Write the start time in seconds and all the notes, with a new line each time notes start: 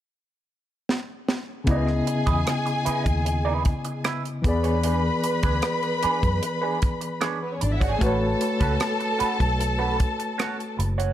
0.89 snare
1.29 snare
1.64 C#2 C#3 B3 E4 B4 D#5 G#5, kick, closed hi-hat
1.68 E4 G#4 D#5
1.87 cross-stick
2.07 muted clean electric guitar stroke, closed hi-hat
2.26 E2 E4 B4 D#5, kick, closed hi-hat
2.46 muted clean electric guitar stroke, cross-stick, closed hi-hat
2.66 muted clean electric guitar stroke, closed hi-hat
2.85 E4 B4 D#5, muted fingered electric bass stroke, closed hi-hat
3.06 D#2, muted clean electric guitar stroke, kick, closed hi-hat
3.25 muted clean electric guitar stroke, closed hi-hat
3.45 E4 B4 D#5
3.65 muted clean electric guitar stroke, kick, closed hi-hat
3.85 muted clean electric guitar stroke, closed hi-hat
4.04 E4 B4 E5, cross-stick, closed hi-hat
4.25 closed hi-hat
4.42 E2 E3 B3 B4 B5, muted clean electric guitar stroke, kick, closed hi-hat
4.47 G#4 D5
4.64 D4 G#4 C#5, closed hi-hat
4.84 D4 G#4 B4, closed hi-hat
5.24 muted clean electric guitar stroke, closed hi-hat
5.43 D2 D4 G#4 B4, kick, closed hi-hat
5.62 muted clean electric guitar stroke, cross-stick, closed hi-hat
5.83 muted clean electric guitar stroke, closed hi-hat
6.03 D4 G#4 B4, muted fingered electric bass stroke, closed hi-hat
6.22 F#2, muted clean electric guitar stroke, kick, closed hi-hat
6.42 muted clean electric guitar stroke, closed hi-hat
6.62 D4 G#4 B4
6.81 muted clean electric guitar stroke, kick, closed hi-hat
7.01 muted clean electric guitar stroke, closed hi-hat
7.21 D4 G#4 C#5, cross-stick, closed hi-hat
7.43 B3 B4
7.53 C#4 C#5
7.61 G#1 D4 D5, muted clean electric guitar stroke, closed hi-hat
7.72 E4 E5
7.80 D4 F#4 G#4 C#5 F#5, kick, closed hi-hat
7.90 G#4 G#5
7.99 A1 A3 C#4 F#4 A4 B4 A5, kick, closed hi-hat
8.04 B4 C#5
8.41 muted clean electric guitar stroke, closed hi-hat
8.60 C#2 C#4 F#4 B4, kick, closed hi-hat
8.80 muted clean electric guitar stroke, cross-stick, closed hi-hat
9.00 muted clean electric guitar stroke, closed hi-hat
9.19 C#4 F#4 B4, muted fingered electric bass stroke, closed hi-hat
9.39 B1, muted clean electric guitar stroke, kick, closed hi-hat
9.59 muted clean electric guitar stroke, closed hi-hat
9.79 C#4 F#4 B4
9.99 muted clean electric guitar stroke, kick, closed hi-hat
10.19 muted clean electric guitar stroke, closed hi-hat
10.38 C#4 F#4 C#5, cross-stick, closed hi-hat
10.60 closed hi-hat
10.78 F#1, muted clean electric guitar stroke, closed hi-hat
10.98 C#4 F#4 C#5, closed hi-hat